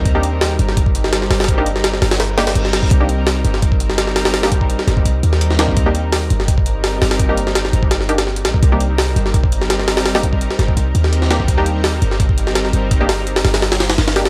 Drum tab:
HH |x---x---o---x---x---x---x---o-oo|x---x---x---o-o-o---o-o-x---x---|x---x---o---x---x---x---x---o-o-|o-o-x---x---x---x---x---x---x---|
SD |--------o-----o-------o-o-o-o-oo|------o-o-o-o-o-o---o-o---o-o---|--------o-----o-------o-o-o-o-o-|o-o-------o-o---------o---o-o---|
BD |o---------------o-o-------------|o-----------------------------o-|o---------------o-o-------------|----o-o-------o---------------o-|

HH |x---x---o---x---x---x---o---o-o-|x---x---x---x---x---x-x---x-x---|x---x---o---x---x---x---x---o-o-|o-o-x---x---x---x---x---x---x---|
SD |--------o-----o---------o---o-o-|------o-o-o-----o-o---o-o---o---|--------o-----o-------o-o-o-o-o-|o-o-------o-o---------o---o-o---|
BD |o---------------o-o-------------|o-------------o---------------o-|o---------------o-o-------------|----o-o-------o---------------o-|

HH |x---x---o---x---x---x---x---x---|x---o---x-o-o-o-o-o-o-o-o-o-o-o-|
SD |--------o-----o-------o-o-o-----|----o-----o-o-o-o-o-o-o-o-o-o-o-|
BD |o---------------o-o-------------|o-------------------------------|